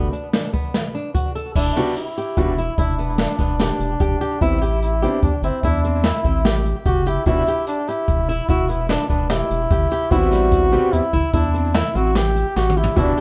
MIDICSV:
0, 0, Header, 1, 6, 480
1, 0, Start_track
1, 0, Key_signature, 1, "minor"
1, 0, Tempo, 407609
1, 1834, Time_signature, 7, 2, 24, 8
1, 15550, End_track
2, 0, Start_track
2, 0, Title_t, "Flugelhorn"
2, 0, Program_c, 0, 56
2, 1834, Note_on_c, 0, 62, 88
2, 2281, Note_off_c, 0, 62, 0
2, 2322, Note_on_c, 0, 64, 70
2, 3276, Note_on_c, 0, 62, 77
2, 3294, Note_off_c, 0, 64, 0
2, 5201, Note_on_c, 0, 64, 92
2, 5219, Note_off_c, 0, 62, 0
2, 5671, Note_off_c, 0, 64, 0
2, 5678, Note_on_c, 0, 64, 82
2, 6125, Note_off_c, 0, 64, 0
2, 6155, Note_on_c, 0, 62, 78
2, 6380, Note_off_c, 0, 62, 0
2, 6402, Note_on_c, 0, 60, 80
2, 6641, Note_on_c, 0, 62, 78
2, 6659, Note_off_c, 0, 60, 0
2, 7127, Note_on_c, 0, 64, 87
2, 7144, Note_off_c, 0, 62, 0
2, 7767, Note_off_c, 0, 64, 0
2, 8078, Note_on_c, 0, 66, 83
2, 8335, Note_on_c, 0, 64, 79
2, 8352, Note_off_c, 0, 66, 0
2, 8556, Note_off_c, 0, 64, 0
2, 8564, Note_on_c, 0, 64, 96
2, 9007, Note_off_c, 0, 64, 0
2, 9036, Note_on_c, 0, 62, 87
2, 9282, Note_on_c, 0, 64, 86
2, 9300, Note_off_c, 0, 62, 0
2, 9999, Note_on_c, 0, 66, 84
2, 10017, Note_off_c, 0, 64, 0
2, 10236, Note_on_c, 0, 64, 91
2, 10253, Note_off_c, 0, 66, 0
2, 10469, Note_off_c, 0, 64, 0
2, 10476, Note_on_c, 0, 62, 88
2, 10699, Note_off_c, 0, 62, 0
2, 10707, Note_on_c, 0, 62, 85
2, 10934, Note_off_c, 0, 62, 0
2, 10959, Note_on_c, 0, 64, 94
2, 11905, Note_on_c, 0, 66, 114
2, 11923, Note_off_c, 0, 64, 0
2, 12862, Note_on_c, 0, 64, 94
2, 12880, Note_off_c, 0, 66, 0
2, 13353, Note_on_c, 0, 62, 83
2, 13371, Note_off_c, 0, 64, 0
2, 13832, Note_on_c, 0, 64, 85
2, 13849, Note_off_c, 0, 62, 0
2, 14084, Note_on_c, 0, 66, 93
2, 14102, Note_off_c, 0, 64, 0
2, 14320, Note_on_c, 0, 67, 103
2, 14338, Note_off_c, 0, 66, 0
2, 14798, Note_on_c, 0, 66, 90
2, 14815, Note_off_c, 0, 67, 0
2, 15040, Note_on_c, 0, 64, 84
2, 15058, Note_off_c, 0, 66, 0
2, 15276, Note_off_c, 0, 64, 0
2, 15284, Note_on_c, 0, 62, 100
2, 15550, Note_off_c, 0, 62, 0
2, 15550, End_track
3, 0, Start_track
3, 0, Title_t, "Nylon-string guitar"
3, 0, Program_c, 1, 24
3, 147, Note_on_c, 1, 62, 60
3, 327, Note_off_c, 1, 62, 0
3, 391, Note_on_c, 1, 62, 69
3, 569, Note_off_c, 1, 62, 0
3, 627, Note_on_c, 1, 59, 68
3, 986, Note_off_c, 1, 59, 0
3, 1113, Note_on_c, 1, 62, 62
3, 1292, Note_off_c, 1, 62, 0
3, 1348, Note_on_c, 1, 66, 70
3, 1528, Note_off_c, 1, 66, 0
3, 1593, Note_on_c, 1, 69, 77
3, 1772, Note_off_c, 1, 69, 0
3, 1835, Note_on_c, 1, 64, 74
3, 2013, Note_off_c, 1, 64, 0
3, 2081, Note_on_c, 1, 67, 64
3, 2436, Note_off_c, 1, 67, 0
3, 2562, Note_on_c, 1, 67, 69
3, 2917, Note_off_c, 1, 67, 0
3, 3041, Note_on_c, 1, 64, 67
3, 3218, Note_off_c, 1, 64, 0
3, 3282, Note_on_c, 1, 64, 84
3, 3458, Note_off_c, 1, 64, 0
3, 3521, Note_on_c, 1, 59, 66
3, 3698, Note_off_c, 1, 59, 0
3, 3758, Note_on_c, 1, 62, 73
3, 3936, Note_off_c, 1, 62, 0
3, 3998, Note_on_c, 1, 59, 70
3, 4176, Note_off_c, 1, 59, 0
3, 4246, Note_on_c, 1, 67, 65
3, 4600, Note_off_c, 1, 67, 0
3, 4715, Note_on_c, 1, 67, 78
3, 4895, Note_off_c, 1, 67, 0
3, 4957, Note_on_c, 1, 67, 71
3, 5136, Note_off_c, 1, 67, 0
3, 5203, Note_on_c, 1, 64, 74
3, 5380, Note_off_c, 1, 64, 0
3, 5436, Note_on_c, 1, 67, 73
3, 5794, Note_off_c, 1, 67, 0
3, 5915, Note_on_c, 1, 67, 66
3, 6273, Note_off_c, 1, 67, 0
3, 6404, Note_on_c, 1, 64, 75
3, 6581, Note_off_c, 1, 64, 0
3, 6647, Note_on_c, 1, 64, 87
3, 6823, Note_off_c, 1, 64, 0
3, 6886, Note_on_c, 1, 60, 67
3, 7062, Note_off_c, 1, 60, 0
3, 7118, Note_on_c, 1, 64, 78
3, 7297, Note_off_c, 1, 64, 0
3, 7358, Note_on_c, 1, 60, 63
3, 7537, Note_off_c, 1, 60, 0
3, 7600, Note_on_c, 1, 67, 68
3, 7956, Note_off_c, 1, 67, 0
3, 8078, Note_on_c, 1, 67, 79
3, 8257, Note_off_c, 1, 67, 0
3, 8322, Note_on_c, 1, 67, 80
3, 8499, Note_off_c, 1, 67, 0
3, 8563, Note_on_c, 1, 64, 77
3, 8740, Note_off_c, 1, 64, 0
3, 8809, Note_on_c, 1, 67, 69
3, 9161, Note_off_c, 1, 67, 0
3, 9286, Note_on_c, 1, 67, 73
3, 9639, Note_off_c, 1, 67, 0
3, 9758, Note_on_c, 1, 64, 76
3, 9936, Note_off_c, 1, 64, 0
3, 10004, Note_on_c, 1, 64, 85
3, 10180, Note_off_c, 1, 64, 0
3, 10236, Note_on_c, 1, 59, 64
3, 10415, Note_off_c, 1, 59, 0
3, 10481, Note_on_c, 1, 62, 81
3, 10658, Note_off_c, 1, 62, 0
3, 10718, Note_on_c, 1, 59, 70
3, 10896, Note_off_c, 1, 59, 0
3, 10960, Note_on_c, 1, 67, 73
3, 11315, Note_off_c, 1, 67, 0
3, 11440, Note_on_c, 1, 67, 81
3, 11617, Note_off_c, 1, 67, 0
3, 11678, Note_on_c, 1, 67, 84
3, 11855, Note_off_c, 1, 67, 0
3, 11913, Note_on_c, 1, 64, 70
3, 12092, Note_off_c, 1, 64, 0
3, 12152, Note_on_c, 1, 55, 68
3, 12509, Note_off_c, 1, 55, 0
3, 12634, Note_on_c, 1, 67, 75
3, 12991, Note_off_c, 1, 67, 0
3, 13111, Note_on_c, 1, 64, 73
3, 13290, Note_off_c, 1, 64, 0
3, 13352, Note_on_c, 1, 64, 80
3, 13531, Note_off_c, 1, 64, 0
3, 13594, Note_on_c, 1, 60, 70
3, 13772, Note_off_c, 1, 60, 0
3, 13835, Note_on_c, 1, 64, 76
3, 14012, Note_off_c, 1, 64, 0
3, 14075, Note_on_c, 1, 60, 69
3, 14253, Note_off_c, 1, 60, 0
3, 14316, Note_on_c, 1, 67, 66
3, 14672, Note_off_c, 1, 67, 0
3, 14797, Note_on_c, 1, 67, 75
3, 14974, Note_off_c, 1, 67, 0
3, 15037, Note_on_c, 1, 67, 81
3, 15214, Note_off_c, 1, 67, 0
3, 15277, Note_on_c, 1, 64, 79
3, 15454, Note_off_c, 1, 64, 0
3, 15514, Note_on_c, 1, 67, 70
3, 15550, Note_off_c, 1, 67, 0
3, 15550, End_track
4, 0, Start_track
4, 0, Title_t, "Grand piano"
4, 0, Program_c, 2, 0
4, 2076, Note_on_c, 2, 59, 77
4, 2080, Note_on_c, 2, 55, 85
4, 2080, Note_on_c, 2, 62, 69
4, 2080, Note_on_c, 2, 66, 93
4, 2243, Note_off_c, 2, 59, 0
4, 2245, Note_off_c, 2, 55, 0
4, 2245, Note_off_c, 2, 62, 0
4, 2246, Note_off_c, 2, 66, 0
4, 2791, Note_on_c, 2, 62, 71
4, 2795, Note_on_c, 2, 55, 75
4, 2796, Note_on_c, 2, 59, 60
4, 2798, Note_on_c, 2, 66, 85
4, 2961, Note_off_c, 2, 62, 0
4, 2964, Note_off_c, 2, 55, 0
4, 2964, Note_off_c, 2, 59, 0
4, 2965, Note_off_c, 2, 66, 0
4, 5192, Note_on_c, 2, 55, 57
4, 5196, Note_on_c, 2, 59, 57
4, 5197, Note_on_c, 2, 60, 55
4, 5200, Note_on_c, 2, 64, 74
4, 5363, Note_off_c, 2, 55, 0
4, 5365, Note_off_c, 2, 59, 0
4, 5366, Note_off_c, 2, 60, 0
4, 5367, Note_off_c, 2, 64, 0
4, 5919, Note_on_c, 2, 59, 61
4, 5922, Note_on_c, 2, 55, 64
4, 5922, Note_on_c, 2, 62, 74
4, 5923, Note_on_c, 2, 60, 63
4, 6087, Note_off_c, 2, 59, 0
4, 6088, Note_off_c, 2, 55, 0
4, 6088, Note_off_c, 2, 62, 0
4, 6089, Note_off_c, 2, 60, 0
4, 8554, Note_on_c, 2, 55, 72
4, 8556, Note_on_c, 2, 59, 64
4, 8556, Note_on_c, 2, 66, 74
4, 8558, Note_on_c, 2, 62, 65
4, 8724, Note_off_c, 2, 55, 0
4, 8725, Note_off_c, 2, 59, 0
4, 8725, Note_off_c, 2, 66, 0
4, 8726, Note_off_c, 2, 62, 0
4, 11905, Note_on_c, 2, 64, 77
4, 11906, Note_on_c, 2, 55, 72
4, 11906, Note_on_c, 2, 59, 65
4, 11906, Note_on_c, 2, 60, 68
4, 12582, Note_off_c, 2, 55, 0
4, 12582, Note_off_c, 2, 59, 0
4, 12582, Note_off_c, 2, 60, 0
4, 12582, Note_off_c, 2, 64, 0
4, 12620, Note_on_c, 2, 55, 72
4, 12622, Note_on_c, 2, 60, 66
4, 12625, Note_on_c, 2, 59, 60
4, 12625, Note_on_c, 2, 67, 75
4, 12963, Note_off_c, 2, 55, 0
4, 12964, Note_off_c, 2, 60, 0
4, 12965, Note_off_c, 2, 59, 0
4, 12965, Note_off_c, 2, 67, 0
4, 15262, Note_on_c, 2, 55, 73
4, 15262, Note_on_c, 2, 59, 68
4, 15262, Note_on_c, 2, 62, 65
4, 15267, Note_on_c, 2, 66, 82
4, 15435, Note_off_c, 2, 55, 0
4, 15435, Note_off_c, 2, 59, 0
4, 15435, Note_off_c, 2, 62, 0
4, 15438, Note_off_c, 2, 66, 0
4, 15550, End_track
5, 0, Start_track
5, 0, Title_t, "Analog synth bass"
5, 0, Program_c, 3, 38
5, 1831, Note_on_c, 3, 28, 106
5, 2026, Note_off_c, 3, 28, 0
5, 2792, Note_on_c, 3, 28, 75
5, 3182, Note_off_c, 3, 28, 0
5, 3271, Note_on_c, 3, 28, 96
5, 3856, Note_off_c, 3, 28, 0
5, 3991, Note_on_c, 3, 28, 99
5, 4382, Note_off_c, 3, 28, 0
5, 4470, Note_on_c, 3, 28, 87
5, 4668, Note_off_c, 3, 28, 0
5, 4713, Note_on_c, 3, 28, 103
5, 4910, Note_off_c, 3, 28, 0
5, 5197, Note_on_c, 3, 33, 91
5, 5974, Note_off_c, 3, 33, 0
5, 6155, Note_on_c, 3, 40, 84
5, 6254, Note_off_c, 3, 40, 0
5, 6381, Note_on_c, 3, 31, 80
5, 6486, Note_off_c, 3, 31, 0
5, 6629, Note_on_c, 3, 40, 90
5, 7216, Note_off_c, 3, 40, 0
5, 7352, Note_on_c, 3, 33, 97
5, 7937, Note_off_c, 3, 33, 0
5, 8074, Note_on_c, 3, 30, 93
5, 8464, Note_off_c, 3, 30, 0
5, 8549, Note_on_c, 3, 28, 103
5, 8747, Note_off_c, 3, 28, 0
5, 9518, Note_on_c, 3, 28, 84
5, 9906, Note_off_c, 3, 28, 0
5, 9997, Note_on_c, 3, 28, 87
5, 10579, Note_off_c, 3, 28, 0
5, 10712, Note_on_c, 3, 28, 91
5, 11102, Note_off_c, 3, 28, 0
5, 11194, Note_on_c, 3, 28, 107
5, 11388, Note_off_c, 3, 28, 0
5, 11428, Note_on_c, 3, 31, 99
5, 11625, Note_off_c, 3, 31, 0
5, 11907, Note_on_c, 3, 33, 100
5, 12686, Note_off_c, 3, 33, 0
5, 12873, Note_on_c, 3, 40, 77
5, 12970, Note_off_c, 3, 40, 0
5, 13113, Note_on_c, 3, 31, 78
5, 13210, Note_off_c, 3, 31, 0
5, 13346, Note_on_c, 3, 40, 87
5, 13931, Note_off_c, 3, 40, 0
5, 14073, Note_on_c, 3, 33, 100
5, 14655, Note_off_c, 3, 33, 0
5, 14793, Note_on_c, 3, 33, 84
5, 15181, Note_off_c, 3, 33, 0
5, 15273, Note_on_c, 3, 28, 103
5, 15467, Note_off_c, 3, 28, 0
5, 15550, End_track
6, 0, Start_track
6, 0, Title_t, "Drums"
6, 150, Note_on_c, 9, 42, 51
6, 268, Note_off_c, 9, 42, 0
6, 393, Note_on_c, 9, 38, 98
6, 393, Note_on_c, 9, 42, 74
6, 511, Note_off_c, 9, 38, 0
6, 511, Note_off_c, 9, 42, 0
6, 632, Note_on_c, 9, 36, 67
6, 636, Note_on_c, 9, 42, 55
6, 749, Note_off_c, 9, 36, 0
6, 754, Note_off_c, 9, 42, 0
6, 875, Note_on_c, 9, 38, 101
6, 875, Note_on_c, 9, 42, 83
6, 993, Note_off_c, 9, 38, 0
6, 993, Note_off_c, 9, 42, 0
6, 1112, Note_on_c, 9, 42, 56
6, 1230, Note_off_c, 9, 42, 0
6, 1351, Note_on_c, 9, 36, 92
6, 1352, Note_on_c, 9, 42, 81
6, 1469, Note_off_c, 9, 36, 0
6, 1469, Note_off_c, 9, 42, 0
6, 1591, Note_on_c, 9, 42, 53
6, 1709, Note_off_c, 9, 42, 0
6, 1832, Note_on_c, 9, 36, 100
6, 1833, Note_on_c, 9, 49, 94
6, 1950, Note_off_c, 9, 36, 0
6, 1951, Note_off_c, 9, 49, 0
6, 2072, Note_on_c, 9, 38, 31
6, 2072, Note_on_c, 9, 42, 50
6, 2190, Note_off_c, 9, 38, 0
6, 2190, Note_off_c, 9, 42, 0
6, 2307, Note_on_c, 9, 42, 78
6, 2425, Note_off_c, 9, 42, 0
6, 2554, Note_on_c, 9, 42, 58
6, 2671, Note_off_c, 9, 42, 0
6, 2791, Note_on_c, 9, 42, 73
6, 2793, Note_on_c, 9, 36, 88
6, 2908, Note_off_c, 9, 42, 0
6, 2910, Note_off_c, 9, 36, 0
6, 3038, Note_on_c, 9, 42, 60
6, 3156, Note_off_c, 9, 42, 0
6, 3274, Note_on_c, 9, 36, 95
6, 3275, Note_on_c, 9, 42, 68
6, 3392, Note_off_c, 9, 36, 0
6, 3393, Note_off_c, 9, 42, 0
6, 3513, Note_on_c, 9, 42, 60
6, 3631, Note_off_c, 9, 42, 0
6, 3747, Note_on_c, 9, 38, 104
6, 3747, Note_on_c, 9, 42, 89
6, 3864, Note_off_c, 9, 38, 0
6, 3864, Note_off_c, 9, 42, 0
6, 3987, Note_on_c, 9, 38, 28
6, 3987, Note_on_c, 9, 42, 58
6, 3992, Note_on_c, 9, 36, 74
6, 4105, Note_off_c, 9, 38, 0
6, 4105, Note_off_c, 9, 42, 0
6, 4110, Note_off_c, 9, 36, 0
6, 4234, Note_on_c, 9, 38, 96
6, 4234, Note_on_c, 9, 42, 84
6, 4352, Note_off_c, 9, 38, 0
6, 4352, Note_off_c, 9, 42, 0
6, 4472, Note_on_c, 9, 42, 57
6, 4590, Note_off_c, 9, 42, 0
6, 4707, Note_on_c, 9, 42, 82
6, 4713, Note_on_c, 9, 36, 103
6, 4825, Note_off_c, 9, 42, 0
6, 4831, Note_off_c, 9, 36, 0
6, 4957, Note_on_c, 9, 42, 57
6, 5075, Note_off_c, 9, 42, 0
6, 5197, Note_on_c, 9, 36, 96
6, 5200, Note_on_c, 9, 42, 76
6, 5315, Note_off_c, 9, 36, 0
6, 5317, Note_off_c, 9, 42, 0
6, 5442, Note_on_c, 9, 42, 58
6, 5559, Note_off_c, 9, 42, 0
6, 5679, Note_on_c, 9, 42, 82
6, 5797, Note_off_c, 9, 42, 0
6, 5917, Note_on_c, 9, 42, 57
6, 6034, Note_off_c, 9, 42, 0
6, 6156, Note_on_c, 9, 42, 68
6, 6157, Note_on_c, 9, 36, 85
6, 6274, Note_off_c, 9, 36, 0
6, 6274, Note_off_c, 9, 42, 0
6, 6392, Note_on_c, 9, 42, 52
6, 6510, Note_off_c, 9, 42, 0
6, 6630, Note_on_c, 9, 42, 63
6, 6635, Note_on_c, 9, 36, 91
6, 6748, Note_off_c, 9, 42, 0
6, 6752, Note_off_c, 9, 36, 0
6, 6875, Note_on_c, 9, 42, 51
6, 6993, Note_off_c, 9, 42, 0
6, 7109, Note_on_c, 9, 38, 104
6, 7109, Note_on_c, 9, 42, 80
6, 7227, Note_off_c, 9, 38, 0
6, 7227, Note_off_c, 9, 42, 0
6, 7352, Note_on_c, 9, 42, 52
6, 7356, Note_on_c, 9, 36, 71
6, 7470, Note_off_c, 9, 42, 0
6, 7474, Note_off_c, 9, 36, 0
6, 7595, Note_on_c, 9, 38, 110
6, 7595, Note_on_c, 9, 42, 75
6, 7712, Note_off_c, 9, 38, 0
6, 7712, Note_off_c, 9, 42, 0
6, 7834, Note_on_c, 9, 42, 60
6, 7952, Note_off_c, 9, 42, 0
6, 8072, Note_on_c, 9, 42, 81
6, 8074, Note_on_c, 9, 36, 97
6, 8190, Note_off_c, 9, 42, 0
6, 8192, Note_off_c, 9, 36, 0
6, 8311, Note_on_c, 9, 42, 58
6, 8429, Note_off_c, 9, 42, 0
6, 8545, Note_on_c, 9, 42, 79
6, 8553, Note_on_c, 9, 36, 91
6, 8663, Note_off_c, 9, 42, 0
6, 8671, Note_off_c, 9, 36, 0
6, 8791, Note_on_c, 9, 42, 61
6, 8909, Note_off_c, 9, 42, 0
6, 9030, Note_on_c, 9, 42, 84
6, 9148, Note_off_c, 9, 42, 0
6, 9273, Note_on_c, 9, 42, 57
6, 9391, Note_off_c, 9, 42, 0
6, 9516, Note_on_c, 9, 42, 74
6, 9517, Note_on_c, 9, 36, 95
6, 9634, Note_off_c, 9, 42, 0
6, 9635, Note_off_c, 9, 36, 0
6, 9754, Note_on_c, 9, 42, 51
6, 9871, Note_off_c, 9, 42, 0
6, 9993, Note_on_c, 9, 42, 77
6, 9995, Note_on_c, 9, 36, 97
6, 10110, Note_off_c, 9, 42, 0
6, 10113, Note_off_c, 9, 36, 0
6, 10233, Note_on_c, 9, 42, 55
6, 10351, Note_off_c, 9, 42, 0
6, 10471, Note_on_c, 9, 38, 109
6, 10471, Note_on_c, 9, 42, 72
6, 10589, Note_off_c, 9, 38, 0
6, 10589, Note_off_c, 9, 42, 0
6, 10713, Note_on_c, 9, 36, 70
6, 10713, Note_on_c, 9, 42, 55
6, 10831, Note_off_c, 9, 36, 0
6, 10831, Note_off_c, 9, 42, 0
6, 10948, Note_on_c, 9, 38, 101
6, 10948, Note_on_c, 9, 42, 75
6, 11066, Note_off_c, 9, 38, 0
6, 11066, Note_off_c, 9, 42, 0
6, 11189, Note_on_c, 9, 42, 56
6, 11306, Note_off_c, 9, 42, 0
6, 11428, Note_on_c, 9, 42, 82
6, 11431, Note_on_c, 9, 36, 110
6, 11546, Note_off_c, 9, 42, 0
6, 11549, Note_off_c, 9, 36, 0
6, 11667, Note_on_c, 9, 42, 57
6, 11785, Note_off_c, 9, 42, 0
6, 11903, Note_on_c, 9, 42, 78
6, 11909, Note_on_c, 9, 36, 94
6, 12020, Note_off_c, 9, 42, 0
6, 12027, Note_off_c, 9, 36, 0
6, 12147, Note_on_c, 9, 38, 33
6, 12147, Note_on_c, 9, 42, 56
6, 12264, Note_off_c, 9, 38, 0
6, 12264, Note_off_c, 9, 42, 0
6, 12387, Note_on_c, 9, 42, 87
6, 12389, Note_on_c, 9, 36, 96
6, 12505, Note_off_c, 9, 42, 0
6, 12507, Note_off_c, 9, 36, 0
6, 12628, Note_on_c, 9, 42, 57
6, 12746, Note_off_c, 9, 42, 0
6, 12868, Note_on_c, 9, 42, 69
6, 12986, Note_off_c, 9, 42, 0
6, 13110, Note_on_c, 9, 36, 76
6, 13110, Note_on_c, 9, 42, 60
6, 13227, Note_off_c, 9, 42, 0
6, 13228, Note_off_c, 9, 36, 0
6, 13346, Note_on_c, 9, 42, 86
6, 13349, Note_on_c, 9, 36, 90
6, 13464, Note_off_c, 9, 42, 0
6, 13467, Note_off_c, 9, 36, 0
6, 13586, Note_on_c, 9, 42, 56
6, 13704, Note_off_c, 9, 42, 0
6, 13831, Note_on_c, 9, 38, 108
6, 13831, Note_on_c, 9, 42, 77
6, 13948, Note_off_c, 9, 38, 0
6, 13948, Note_off_c, 9, 42, 0
6, 14075, Note_on_c, 9, 42, 53
6, 14192, Note_off_c, 9, 42, 0
6, 14311, Note_on_c, 9, 38, 94
6, 14311, Note_on_c, 9, 42, 81
6, 14429, Note_off_c, 9, 38, 0
6, 14429, Note_off_c, 9, 42, 0
6, 14551, Note_on_c, 9, 42, 53
6, 14669, Note_off_c, 9, 42, 0
6, 14794, Note_on_c, 9, 38, 63
6, 14911, Note_off_c, 9, 38, 0
6, 14952, Note_on_c, 9, 47, 65
6, 15070, Note_off_c, 9, 47, 0
6, 15115, Note_on_c, 9, 43, 94
6, 15232, Note_off_c, 9, 43, 0
6, 15266, Note_on_c, 9, 42, 70
6, 15270, Note_on_c, 9, 36, 105
6, 15384, Note_off_c, 9, 42, 0
6, 15388, Note_off_c, 9, 36, 0
6, 15510, Note_on_c, 9, 42, 53
6, 15550, Note_off_c, 9, 42, 0
6, 15550, End_track
0, 0, End_of_file